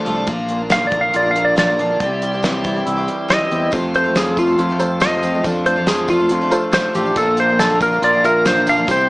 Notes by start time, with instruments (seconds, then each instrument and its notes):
Already playing: clean electric guitar F3 A3 F4, tonewheel organ A3 D4 F4 A4
0.05 fingered electric bass C2, twelve-string acoustic guitar F3 A3 D4 F4, clean electric guitar D4, closed hi-hat
0.15 twelve-string acoustic guitar F3 A3 D4 F4
0.27 fingered electric bass A#1, twelve-string acoustic guitar A#2 F3 A#3 D4 F4, clean electric guitar A#2, tonewheel organ A#3 D4 F4 A#4, kick, closed hi-hat
0.48 clean electric guitar A#3, closed hi-hat
0.58 twelve-string acoustic guitar A#3 D4 F4
0.69 twelve-string acoustic guitar A#2 F3 A#3 D4 F4, clean electric guitar D3, electric slide guitar F5, snare, closed hi-hat
0.87 twelve-string acoustic guitar F3, electric slide guitar D5
0.91 twelve-string acoustic guitar A#3 D4 F4, clean electric guitar A#3, kick, closed hi-hat
1.01 electric slide guitar F5
1.13 fingered electric bass A#1, clean electric guitar F4, electric slide guitar D5, closed hi-hat
1.23 twelve-string acoustic guitar A#3 D4 F4
1.31 electric slide guitar F5
1.35 clean electric guitar A#3, closed hi-hat
1.45 electric slide guitar D5
1.55 twelve-string acoustic guitar A#2 F3 A#3 D4 F4, clean electric guitar D3, electric slide guitar D5, snare, closed hi-hat
1.66 twelve-string acoustic guitar A#3 D4 F4
1.77 twelve-string acoustic guitar F3 A#3 D4 F4, clean electric guitar D4, closed hi-hat
1.89 twelve-string acoustic guitar A#3 D4 F4
2.00 fingered electric bass C2, twelve-string acoustic guitar C3 G3 C4 E4 G4, clean electric guitar C3, tonewheel organ G3 C4 E4 G4, kick, closed hi-hat
2.22 clean electric guitar G3, closed hi-hat
2.32 twelve-string acoustic guitar C4 E4 G4
2.43 twelve-string acoustic guitar C3 G3 C4 E4 G4, clean electric guitar E3, snare, closed hi-hat
2.64 twelve-string acoustic guitar G3 C4 E4 G4, clean electric guitar G3, kick, closed hi-hat
2.74 twelve-string acoustic guitar C4 E4 G4
2.86 fingered electric bass C2, clean electric guitar E4, closed hi-hat
2.96 twelve-string acoustic guitar C4 E4 G4
3.08 clean electric guitar G3, closed hi-hat
3.28 twelve-string acoustic guitar C3 G3 C4 E4 G4, clean electric guitar E3, electric slide guitar D#5, snare, closed hi-hat
3.39 twelve-string acoustic guitar C4 E4 G4
3.49 fingered electric bass E2, twelve-string acoustic guitar G3 C4 E4 G4, clean electric guitar C4, closed hi-hat
3.60 twelve-string acoustic guitar C4 E4 G4
3.71 twelve-string acoustic guitar F2 C3 F3 A3 C4 F4, fingered electric bass F2, clean electric guitar F2, tonewheel organ A3 C4 F4 A4, upright piano F4 A4 C5, kick, closed hi-hat, tambourine
3.94 clean electric guitar A3, electric slide guitar C5, closed hi-hat, tambourine
4.04 twelve-string acoustic guitar F3 A3 C4 F4
4.15 twelve-string acoustic guitar F2 C3 F3 A3 C4 F4, clean electric guitar F3, electric slide guitar G#4, snare, closed hi-hat, tambourine
4.27 tambourine
4.37 twelve-string acoustic guitar F3 A3 C4 F4, clean electric guitar A3, electric slide guitar F4, kick, closed hi-hat, tambourine
4.47 twelve-string acoustic guitar F3 A3 C4 F4, tambourine
4.58 fingered electric bass F2, clean electric guitar F4, closed hi-hat, tambourine
4.69 twelve-string acoustic guitar F3 A3 C4 F4
4.79 clean electric guitar A3, upright piano F4 A4 C5, closed hi-hat, tambourine
5.00 twelve-string acoustic guitar F2 C3 F3 A3 C4 F4, clean electric guitar F3, electric slide guitar D#5, snare, closed hi-hat, tambourine
5.12 tambourine
5.21 twelve-string acoustic guitar F3 A3 C4 F4, clean electric guitar C4, closed hi-hat, tambourine
5.32 twelve-string acoustic guitar F3 A3 C4 F4, tambourine
5.43 twelve-string acoustic guitar F2 D3 F3 A3 D4 F4, fingered electric bass F2, clean electric guitar F3, tonewheel organ A3 D4 F4 A4, upright piano F4 A4 D5, kick, closed hi-hat, tambourine
5.66 clean electric guitar A3, electric slide guitar C5, closed hi-hat, tambourine
5.76 twelve-string acoustic guitar F3 A3 D4 F4
5.86 twelve-string acoustic guitar F2 D3 F3 A3 D4 F4, clean electric guitar F3, electric slide guitar G#4, snare, closed hi-hat, tambourine
5.98 tambourine
6.07 twelve-string acoustic guitar F3 A3 D4 F4, clean electric guitar A3, electric slide guitar F4, kick, closed hi-hat, tambourine
6.19 twelve-string acoustic guitar F3 A3 D4 F4, tambourine
6.29 fingered electric bass F2, clean electric guitar F4, closed hi-hat, tambourine
6.41 twelve-string acoustic guitar F3 A3 D4 F4
6.50 clean electric guitar A3, upright piano F4 A4 C5, closed hi-hat, tambourine
6.71 twelve-string acoustic guitar F2 D3 F3 A3 D4 F4, clean electric guitar F3, electric slide guitar C5, snare, closed hi-hat, tambourine
6.83 twelve-string acoustic guitar F3 A3 D4 F4
6.93 fingered electric bass A1, twelve-string acoustic guitar F3 A3 D4 F4, clean electric guitar D4, electric slide guitar G4, closed hi-hat, tambourine
7.05 twelve-string acoustic guitar F3 A3 D4 F4, tambourine
7.15 fingered electric bass A#1, twelve-string acoustic guitar A#2 F3 A#3 D4 F4, clean electric guitar A#2, tonewheel organ A#3 D4 F4 A#4, upright piano F4 A#4 D5, electric slide guitar A4, kick, closed hi-hat, tambourine
7.37 clean electric guitar A#3, electric slide guitar C5, closed hi-hat, tambourine
7.49 twelve-string acoustic guitar A#3 D4 F4
7.59 twelve-string acoustic guitar A#2 F3 A#3 D4 F4, clean electric guitar D3, electric slide guitar A4, snare, closed hi-hat, tambourine
7.70 tambourine
7.80 twelve-string acoustic guitar F3 A#3 D4 F4, clean electric guitar A#3, electric slide guitar A#4, kick, closed hi-hat, tambourine
7.93 tambourine
8.02 fingered electric bass A#1, clean electric guitar F4, electric slide guitar D5, closed hi-hat, tambourine
8.13 twelve-string acoustic guitar A#3 D4 F4
8.24 clean electric guitar A#3, upright piano F4 A#4 E5, electric slide guitar A#4, closed hi-hat, tambourine
8.45 twelve-string acoustic guitar A#2 F3 A#3 D4 F4, clean electric guitar D3, electric slide guitar C5, snare, closed hi-hat, tambourine
8.56 twelve-string acoustic guitar A#3 D4 F4
8.66 twelve-string acoustic guitar F3 A#3 D4 F4, clean electric guitar D4, electric slide guitar F5, closed hi-hat, tambourine
8.76 twelve-string acoustic guitar A#3 D4 F4, tambourine
8.87 fingered electric bass C2, twelve-string acoustic guitar C3 G3 C4 E4 G4, clean electric guitar C3, tonewheel organ C4 E4 G4 C5, upright piano E4 G4 C5, kick, closed hi-hat, tambourine
8.91 electric slide guitar C5
9.00 tambourine